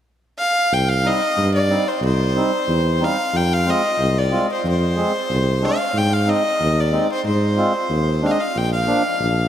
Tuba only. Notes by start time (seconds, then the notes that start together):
0.72 C2
1.37 G2
2.02 C2
2.68 E2
3.33 F2
3.99 C2
4.64 F2
5.30 C2
5.94 G#2
6.60 D#2
7.24 G#2
7.90 D#2
8.55 A#1
9.20 A#1